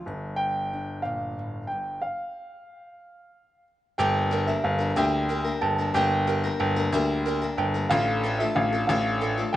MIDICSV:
0, 0, Header, 1, 6, 480
1, 0, Start_track
1, 0, Tempo, 653595
1, 43, Time_signature, 6, 3, 24, 8
1, 7024, End_track
2, 0, Start_track
2, 0, Title_t, "Upright piano"
2, 0, Program_c, 0, 0
2, 267, Note_on_c, 0, 79, 88
2, 751, Note_on_c, 0, 77, 69
2, 773, Note_off_c, 0, 79, 0
2, 1212, Note_off_c, 0, 77, 0
2, 1229, Note_on_c, 0, 79, 66
2, 1462, Note_off_c, 0, 79, 0
2, 1480, Note_on_c, 0, 77, 66
2, 2658, Note_off_c, 0, 77, 0
2, 2923, Note_on_c, 0, 79, 81
2, 3262, Note_off_c, 0, 79, 0
2, 3282, Note_on_c, 0, 76, 67
2, 3406, Note_on_c, 0, 77, 70
2, 3411, Note_off_c, 0, 76, 0
2, 3645, Note_on_c, 0, 79, 79
2, 3656, Note_off_c, 0, 77, 0
2, 4122, Note_on_c, 0, 81, 79
2, 4143, Note_off_c, 0, 79, 0
2, 4366, Note_on_c, 0, 79, 84
2, 4374, Note_off_c, 0, 81, 0
2, 5298, Note_off_c, 0, 79, 0
2, 5798, Note_on_c, 0, 77, 86
2, 6162, Note_on_c, 0, 76, 68
2, 6173, Note_off_c, 0, 77, 0
2, 6282, Note_on_c, 0, 77, 76
2, 6288, Note_off_c, 0, 76, 0
2, 6505, Note_off_c, 0, 77, 0
2, 6516, Note_on_c, 0, 77, 75
2, 6997, Note_on_c, 0, 79, 87
2, 7014, Note_off_c, 0, 77, 0
2, 7024, Note_off_c, 0, 79, 0
2, 7024, End_track
3, 0, Start_track
3, 0, Title_t, "Ukulele"
3, 0, Program_c, 1, 24
3, 2928, Note_on_c, 1, 67, 83
3, 3167, Note_on_c, 1, 70, 67
3, 3635, Note_off_c, 1, 67, 0
3, 3644, Note_on_c, 1, 67, 67
3, 3875, Note_off_c, 1, 70, 0
3, 3884, Note_on_c, 1, 70, 60
3, 4124, Note_on_c, 1, 79, 72
3, 4353, Note_off_c, 1, 67, 0
3, 4362, Note_on_c, 1, 67, 83
3, 4596, Note_off_c, 1, 70, 0
3, 4605, Note_on_c, 1, 70, 79
3, 4836, Note_off_c, 1, 79, 0
3, 4844, Note_on_c, 1, 79, 65
3, 5075, Note_off_c, 1, 67, 0
3, 5084, Note_on_c, 1, 67, 64
3, 5318, Note_off_c, 1, 70, 0
3, 5327, Note_on_c, 1, 70, 66
3, 5558, Note_off_c, 1, 79, 0
3, 5567, Note_on_c, 1, 79, 72
3, 5805, Note_off_c, 1, 67, 0
3, 5807, Note_off_c, 1, 70, 0
3, 5807, Note_off_c, 1, 79, 0
3, 5810, Note_on_c, 1, 65, 91
3, 6048, Note_on_c, 1, 69, 79
3, 6518, Note_off_c, 1, 65, 0
3, 6526, Note_on_c, 1, 65, 66
3, 6758, Note_off_c, 1, 69, 0
3, 6767, Note_on_c, 1, 69, 76
3, 7024, Note_off_c, 1, 65, 0
3, 7024, Note_off_c, 1, 69, 0
3, 7024, End_track
4, 0, Start_track
4, 0, Title_t, "Steel-string acoustic guitar"
4, 0, Program_c, 2, 25
4, 2928, Note_on_c, 2, 43, 74
4, 2934, Note_on_c, 2, 50, 72
4, 2935, Note_on_c, 2, 55, 71
4, 2940, Note_on_c, 2, 58, 81
4, 2940, Note_on_c, 2, 62, 76
4, 2941, Note_on_c, 2, 70, 74
4, 3157, Note_off_c, 2, 55, 0
4, 3166, Note_off_c, 2, 58, 0
4, 3166, Note_on_c, 2, 55, 54
4, 3169, Note_off_c, 2, 62, 0
4, 3170, Note_off_c, 2, 43, 0
4, 3173, Note_off_c, 2, 50, 0
4, 3175, Note_on_c, 2, 58, 61
4, 3177, Note_off_c, 2, 70, 0
4, 3178, Note_on_c, 2, 62, 60
4, 3185, Note_on_c, 2, 70, 58
4, 3277, Note_off_c, 2, 70, 0
4, 3282, Note_off_c, 2, 62, 0
4, 3285, Note_on_c, 2, 70, 48
4, 3289, Note_off_c, 2, 55, 0
4, 3289, Note_off_c, 2, 58, 0
4, 3291, Note_on_c, 2, 62, 44
4, 3298, Note_on_c, 2, 58, 42
4, 3302, Note_on_c, 2, 55, 41
4, 3505, Note_off_c, 2, 70, 0
4, 3514, Note_on_c, 2, 70, 45
4, 3517, Note_off_c, 2, 62, 0
4, 3521, Note_off_c, 2, 58, 0
4, 3525, Note_on_c, 2, 62, 48
4, 3527, Note_off_c, 2, 55, 0
4, 3530, Note_on_c, 2, 58, 39
4, 3536, Note_on_c, 2, 55, 43
4, 3639, Note_off_c, 2, 55, 0
4, 3643, Note_off_c, 2, 58, 0
4, 3643, Note_off_c, 2, 70, 0
4, 3643, Note_on_c, 2, 43, 65
4, 3645, Note_off_c, 2, 62, 0
4, 3645, Note_on_c, 2, 50, 71
4, 3648, Note_on_c, 2, 55, 77
4, 3652, Note_on_c, 2, 58, 74
4, 3654, Note_on_c, 2, 62, 83
4, 3657, Note_on_c, 2, 70, 67
4, 3875, Note_off_c, 2, 55, 0
4, 3884, Note_off_c, 2, 58, 0
4, 3884, Note_on_c, 2, 55, 49
4, 3887, Note_off_c, 2, 43, 0
4, 3888, Note_off_c, 2, 50, 0
4, 3889, Note_off_c, 2, 62, 0
4, 3893, Note_on_c, 2, 58, 57
4, 3894, Note_off_c, 2, 70, 0
4, 3898, Note_on_c, 2, 62, 55
4, 3905, Note_on_c, 2, 70, 57
4, 3990, Note_off_c, 2, 70, 0
4, 3999, Note_on_c, 2, 70, 51
4, 4003, Note_off_c, 2, 62, 0
4, 4005, Note_off_c, 2, 58, 0
4, 4008, Note_off_c, 2, 55, 0
4, 4011, Note_on_c, 2, 62, 46
4, 4014, Note_on_c, 2, 58, 38
4, 4022, Note_on_c, 2, 55, 43
4, 4239, Note_off_c, 2, 70, 0
4, 4246, Note_off_c, 2, 62, 0
4, 4248, Note_on_c, 2, 70, 46
4, 4253, Note_off_c, 2, 58, 0
4, 4255, Note_on_c, 2, 62, 45
4, 4257, Note_off_c, 2, 55, 0
4, 4262, Note_on_c, 2, 58, 41
4, 4267, Note_on_c, 2, 55, 42
4, 4363, Note_off_c, 2, 55, 0
4, 4366, Note_off_c, 2, 58, 0
4, 4366, Note_on_c, 2, 43, 66
4, 4369, Note_off_c, 2, 70, 0
4, 4370, Note_off_c, 2, 62, 0
4, 4372, Note_on_c, 2, 50, 68
4, 4372, Note_on_c, 2, 55, 66
4, 4375, Note_on_c, 2, 58, 86
4, 4379, Note_on_c, 2, 62, 77
4, 4382, Note_on_c, 2, 70, 83
4, 4599, Note_off_c, 2, 55, 0
4, 4608, Note_off_c, 2, 43, 0
4, 4608, Note_off_c, 2, 58, 0
4, 4608, Note_on_c, 2, 55, 66
4, 4611, Note_off_c, 2, 50, 0
4, 4612, Note_off_c, 2, 62, 0
4, 4616, Note_off_c, 2, 70, 0
4, 4617, Note_on_c, 2, 58, 57
4, 4621, Note_on_c, 2, 62, 68
4, 4628, Note_on_c, 2, 70, 61
4, 4718, Note_off_c, 2, 70, 0
4, 4727, Note_off_c, 2, 62, 0
4, 4727, Note_on_c, 2, 70, 54
4, 4729, Note_off_c, 2, 55, 0
4, 4734, Note_off_c, 2, 58, 0
4, 4736, Note_on_c, 2, 62, 55
4, 4742, Note_on_c, 2, 58, 49
4, 4748, Note_on_c, 2, 55, 44
4, 4958, Note_off_c, 2, 70, 0
4, 4965, Note_off_c, 2, 62, 0
4, 4967, Note_on_c, 2, 70, 59
4, 4974, Note_on_c, 2, 62, 51
4, 4976, Note_off_c, 2, 58, 0
4, 4979, Note_off_c, 2, 55, 0
4, 4985, Note_on_c, 2, 58, 49
4, 4990, Note_on_c, 2, 55, 45
4, 5086, Note_off_c, 2, 55, 0
4, 5086, Note_off_c, 2, 58, 0
4, 5086, Note_on_c, 2, 43, 75
4, 5088, Note_off_c, 2, 62, 0
4, 5089, Note_off_c, 2, 70, 0
4, 5092, Note_on_c, 2, 50, 78
4, 5095, Note_on_c, 2, 55, 82
4, 5095, Note_on_c, 2, 58, 83
4, 5097, Note_on_c, 2, 62, 76
4, 5102, Note_on_c, 2, 70, 95
4, 5321, Note_off_c, 2, 55, 0
4, 5327, Note_off_c, 2, 43, 0
4, 5329, Note_off_c, 2, 58, 0
4, 5330, Note_on_c, 2, 55, 61
4, 5331, Note_off_c, 2, 50, 0
4, 5333, Note_off_c, 2, 62, 0
4, 5336, Note_off_c, 2, 70, 0
4, 5338, Note_on_c, 2, 58, 64
4, 5345, Note_on_c, 2, 62, 66
4, 5349, Note_on_c, 2, 70, 72
4, 5437, Note_off_c, 2, 70, 0
4, 5444, Note_off_c, 2, 62, 0
4, 5446, Note_on_c, 2, 70, 54
4, 5449, Note_off_c, 2, 55, 0
4, 5449, Note_off_c, 2, 58, 0
4, 5453, Note_on_c, 2, 62, 51
4, 5458, Note_on_c, 2, 58, 46
4, 5465, Note_on_c, 2, 55, 42
4, 5676, Note_off_c, 2, 70, 0
4, 5685, Note_off_c, 2, 62, 0
4, 5685, Note_on_c, 2, 70, 49
4, 5689, Note_off_c, 2, 58, 0
4, 5694, Note_off_c, 2, 55, 0
4, 5694, Note_on_c, 2, 62, 47
4, 5698, Note_on_c, 2, 58, 44
4, 5703, Note_on_c, 2, 55, 39
4, 5806, Note_off_c, 2, 70, 0
4, 5806, Note_on_c, 2, 45, 76
4, 5808, Note_off_c, 2, 62, 0
4, 5808, Note_on_c, 2, 50, 78
4, 5809, Note_off_c, 2, 55, 0
4, 5812, Note_on_c, 2, 57, 75
4, 5813, Note_off_c, 2, 58, 0
4, 5814, Note_on_c, 2, 65, 79
4, 5817, Note_on_c, 2, 62, 72
4, 5818, Note_on_c, 2, 69, 78
4, 6039, Note_off_c, 2, 57, 0
4, 6046, Note_off_c, 2, 62, 0
4, 6047, Note_off_c, 2, 45, 0
4, 6048, Note_off_c, 2, 50, 0
4, 6048, Note_on_c, 2, 57, 53
4, 6051, Note_off_c, 2, 65, 0
4, 6052, Note_off_c, 2, 69, 0
4, 6055, Note_on_c, 2, 62, 68
4, 6061, Note_on_c, 2, 65, 68
4, 6069, Note_on_c, 2, 69, 69
4, 6161, Note_off_c, 2, 69, 0
4, 6167, Note_off_c, 2, 57, 0
4, 6168, Note_off_c, 2, 65, 0
4, 6170, Note_on_c, 2, 69, 61
4, 6171, Note_off_c, 2, 62, 0
4, 6177, Note_on_c, 2, 65, 51
4, 6182, Note_on_c, 2, 62, 44
4, 6188, Note_on_c, 2, 57, 44
4, 6399, Note_off_c, 2, 69, 0
4, 6408, Note_off_c, 2, 65, 0
4, 6408, Note_on_c, 2, 69, 50
4, 6414, Note_off_c, 2, 62, 0
4, 6417, Note_off_c, 2, 57, 0
4, 6417, Note_on_c, 2, 65, 48
4, 6424, Note_on_c, 2, 62, 48
4, 6429, Note_on_c, 2, 57, 42
4, 6525, Note_off_c, 2, 57, 0
4, 6527, Note_off_c, 2, 69, 0
4, 6529, Note_off_c, 2, 62, 0
4, 6529, Note_on_c, 2, 45, 72
4, 6532, Note_off_c, 2, 65, 0
4, 6532, Note_on_c, 2, 50, 73
4, 6534, Note_on_c, 2, 57, 75
4, 6538, Note_on_c, 2, 62, 81
4, 6542, Note_on_c, 2, 65, 82
4, 6545, Note_on_c, 2, 69, 76
4, 6757, Note_off_c, 2, 57, 0
4, 6762, Note_off_c, 2, 62, 0
4, 6765, Note_on_c, 2, 57, 55
4, 6767, Note_off_c, 2, 45, 0
4, 6769, Note_off_c, 2, 50, 0
4, 6770, Note_off_c, 2, 65, 0
4, 6771, Note_on_c, 2, 62, 55
4, 6775, Note_off_c, 2, 69, 0
4, 6779, Note_on_c, 2, 65, 58
4, 6784, Note_on_c, 2, 69, 62
4, 6876, Note_off_c, 2, 69, 0
4, 6884, Note_off_c, 2, 65, 0
4, 6885, Note_off_c, 2, 57, 0
4, 6885, Note_on_c, 2, 69, 51
4, 6888, Note_off_c, 2, 62, 0
4, 6893, Note_on_c, 2, 65, 43
4, 6900, Note_on_c, 2, 62, 41
4, 6905, Note_on_c, 2, 57, 41
4, 7024, Note_off_c, 2, 57, 0
4, 7024, Note_off_c, 2, 62, 0
4, 7024, Note_off_c, 2, 65, 0
4, 7024, Note_off_c, 2, 69, 0
4, 7024, End_track
5, 0, Start_track
5, 0, Title_t, "Steel-string acoustic guitar"
5, 0, Program_c, 3, 25
5, 54, Note_on_c, 3, 43, 62
5, 58, Note_on_c, 3, 62, 50
5, 530, Note_off_c, 3, 62, 0
5, 539, Note_on_c, 3, 62, 46
5, 772, Note_on_c, 3, 46, 57
5, 1011, Note_off_c, 3, 46, 0
5, 1013, Note_off_c, 3, 43, 0
5, 1020, Note_on_c, 3, 45, 51
5, 1255, Note_off_c, 3, 45, 0
5, 1258, Note_on_c, 3, 43, 48
5, 1467, Note_off_c, 3, 62, 0
5, 1494, Note_off_c, 3, 43, 0
5, 7024, End_track
6, 0, Start_track
6, 0, Title_t, "Grand piano"
6, 0, Program_c, 4, 0
6, 45, Note_on_c, 4, 31, 57
6, 1461, Note_off_c, 4, 31, 0
6, 2928, Note_on_c, 4, 31, 90
6, 3307, Note_off_c, 4, 31, 0
6, 3408, Note_on_c, 4, 31, 85
6, 3598, Note_off_c, 4, 31, 0
6, 3648, Note_on_c, 4, 38, 87
6, 4026, Note_off_c, 4, 38, 0
6, 4128, Note_on_c, 4, 31, 72
6, 4318, Note_off_c, 4, 31, 0
6, 4364, Note_on_c, 4, 31, 90
6, 4744, Note_off_c, 4, 31, 0
6, 4847, Note_on_c, 4, 31, 92
6, 5036, Note_off_c, 4, 31, 0
6, 5084, Note_on_c, 4, 38, 85
6, 5463, Note_off_c, 4, 38, 0
6, 5564, Note_on_c, 4, 31, 80
6, 5754, Note_off_c, 4, 31, 0
6, 5807, Note_on_c, 4, 33, 100
6, 6183, Note_off_c, 4, 33, 0
6, 6286, Note_on_c, 4, 33, 86
6, 6474, Note_off_c, 4, 33, 0
6, 6529, Note_on_c, 4, 33, 97
6, 6904, Note_off_c, 4, 33, 0
6, 7024, End_track
0, 0, End_of_file